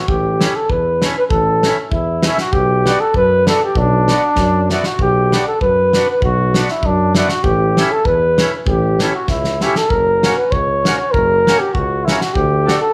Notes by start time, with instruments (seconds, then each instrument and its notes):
0.08 tuba A1, flugelhorn G4, kick
0.40 accordion A3 C#4 E4, snare
0.56 flugelhorn A4
0.70 tuba E2, flugelhorn B4, kick
1.02 accordion A3 C#4 E4, snare
1.18 flugelhorn B4
1.30 tuba A1, flugelhorn A4, kick
1.63 accordion A3 C#4 E4, snare
1.91 tuba E2, flugelhorn E4, kick
2.23 accordion A3 C#4, snare
2.27 flugelhorn E4, accordion E4
2.38 flugelhorn F#4, snare
2.52 tuba B1, flugelhorn G4, kick
2.86 accordion B3 D4 F#4, snare
3.01 flugelhorn A4
3.14 tuba F#2, flugelhorn B4, kick
3.46 accordion B3 D4 F#4, flugelhorn A4, snare
3.65 flugelhorn G4
3.75 tuba B1, flugelhorn D4, kick
4.08 accordion B3 D4 F#4, snare
4.36 tuba F#2, kick, snare
4.70 accordion B3 D4 F#4, flugelhorn E4, snare
4.84 flugelhorn F#4, snare
4.99 tuba B1, flugelhorn G4, kick
5.32 accordion B3 D4 F#4, snare
5.48 flugelhorn A4
5.61 tuba F#2, flugelhorn B4, kick
5.93 accordion B3 D4 F#4, snare
6.10 flugelhorn B4
6.21 tuba B1, flugelhorn F#4, kick
6.54 accordion B3 D4 F#4, snare
6.68 flugelhorn E4, snare
6.82 tuba F#2, flugelhorn D4, kick
7.15 accordion B3 D4 F#4, flugelhorn E4, snare
7.29 flugelhorn F#4, snare
7.43 tuba A1, flugelhorn G4, kick
7.77 accordion A3 C#4 E4, snare
7.92 flugelhorn A4
8.05 tuba E2, flugelhorn B4, kick
8.38 accordion A3 C#4 E4, snare
8.66 tuba A1, flugelhorn G4, kick
8.99 accordion A3 C#4 E4, snare
9.15 flugelhorn F#4
9.28 tuba C#2, flugelhorn E4, kick, snare
9.44 snare
9.61 accordion A3 C#4 E4, flugelhorn G4, snare
9.76 flugelhorn A4, snare
9.89 tuba F#1, flugelhorn A#4, kick
10.23 accordion A#3 C#4 F#4, snare
10.37 flugelhorn B4
10.52 tuba C#2, flugelhorn C#5, kick
10.85 accordion A#3 C#4 F#4, snare
10.98 flugelhorn C#5
11.12 tuba F#1, flugelhorn A#4, kick
11.47 accordion A#3 C#4 F#4, snare
11.59 flugelhorn G4
11.73 tuba C#2, flugelhorn F#4, kick
12.05 accordion A#3 C#4, flugelhorn E4, snare
12.09 accordion F#4
12.21 flugelhorn F#4, snare
12.33 tuba D2, flugelhorn G4, kick
12.65 accordion A3 D4 F#4, snare
12.81 flugelhorn A4